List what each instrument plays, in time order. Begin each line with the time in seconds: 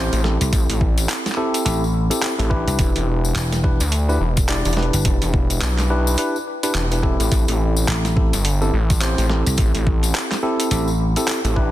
Already playing: analog synth bass A1, tine electric piano C4 E4 G4 C5
0.13 analog synth bass A1, closed hi-hat, tambourine
0.24 tine electric piano C4 E4 G4 A4, snare
0.41 slap bass C2, closed hi-hat, tambourine
0.53 analog synth bass A1, kick, closed hi-hat, tambourine
0.70 analog synth bass A1, closed hi-hat, tambourine
0.81 kick
0.98 closed hi-hat, tambourine
1.09 clap, closed hi-hat, tambourine
1.26 snare, closed hi-hat, tambourine
1.32 clap
1.37 tine electric piano C4 E4 G4 A4
1.54 closed hi-hat, tambourine
1.65 slap bass A1, tine electric piano C4 E4 G4 A4, closed hi-hat, tambourine
1.84 tambourine
2.10 tine electric piano C4 E4 G4 A4, closed hi-hat, tambourine
2.22 clap, closed hi-hat, tambourine
2.39 analog synth bass A1, tine electric piano C4 E4 G4 A4, closed hi-hat, tambourine
2.50 tine electric piano D4 E4 G4 B4, kick
2.67 slap bass C2, closed hi-hat, tambourine
2.79 analog synth bass E1, kick, closed hi-hat, tambourine
2.96 analog synth bass E1, closed hi-hat, tambourine
3.25 tambourine
3.36 slap bass E1, clap, closed hi-hat, tambourine
3.52 snare, closed hi-hat, tambourine
3.64 tine electric piano D4 E4 G4 B4, kick
3.80 analog synth bass D2, closed hi-hat, tambourine
3.92 closed hi-hat, tambourine
4.09 tine electric piano D4 E4 G4 B4, tambourine
4.20 analog synth bass E1
4.37 kick, closed hi-hat, tambourine
4.49 tine electric piano D4 E4 G4 D5, clap, closed hi-hat, tambourine
4.65 analog synth bass E1, closed hi-hat, tambourine
4.73 snare, closed hi-hat
4.77 tine electric piano D4 E4 G4 B4
4.82 closed hi-hat
4.93 slap bass G1, closed hi-hat, tambourine
5.05 analog synth bass E1, kick, closed hi-hat, tambourine
5.22 analog synth bass E1, closed hi-hat, tambourine
5.34 kick
5.50 closed hi-hat, tambourine
5.61 analog synth bass B1, clap, closed hi-hat, tambourine
5.78 clap, snare, closed hi-hat, tambourine
5.90 tine electric piano D4 E4 G4 B4
6.07 tambourine
6.18 tine electric piano D4 E4 G4 B4, closed hi-hat, tambourine
6.36 tambourine
6.63 tine electric piano D4 E4 G4 B4, closed hi-hat, tambourine
6.75 analog synth bass E1, clap, closed hi-hat, tambourine
6.91 tine electric piano D4 E4 G4 B4, closed hi-hat, tambourine
7.03 tine electric piano C4 E4 G4 A4, kick
7.20 analog synth bass A1, closed hi-hat, tambourine
7.32 analog synth bass A1, kick, closed hi-hat, tambourine
7.48 analog synth bass A1, closed hi-hat, tambourine
7.77 tambourine
7.88 slap bass A1, clap, closed hi-hat
8.05 snare, closed hi-hat, tambourine
8.16 tine electric piano C4 E4 G4 A4, kick
8.33 analog synth bass G1, closed hi-hat, tambourine
8.45 closed hi-hat, tambourine
8.61 tine electric piano C4 E4 G4 A4, tambourine
8.73 analog synth bass A1
8.90 kick, closed hi-hat, tambourine
9.01 tine electric piano C4 E4 G4 C5, clap, closed hi-hat, tambourine
9.18 analog synth bass A1, closed hi-hat, tambourine
9.30 tine electric piano C4 E4 G4 A4, snare
9.46 slap bass C2, closed hi-hat, tambourine
9.57 analog synth bass A1, kick, closed hi-hat, tambourine
9.75 analog synth bass A1, closed hi-hat, tambourine
9.87 kick
10.03 closed hi-hat, tambourine
10.15 clap, closed hi-hat
10.31 clap, snare, closed hi-hat, tambourine
10.43 tine electric piano C4 E4 G4 A4
10.60 closed hi-hat, tambourine
10.71 slap bass A1, tine electric piano C4 E4 G4 A4, closed hi-hat, tambourine
10.87 tambourine
11.16 tine electric piano C4 E4 G4 A4, closed hi-hat, tambourine
11.28 clap, closed hi-hat, tambourine
11.45 analog synth bass A1, tine electric piano C4 E4 G4 A4, closed hi-hat, tambourine
11.56 tine electric piano D4 E4 G4 B4, kick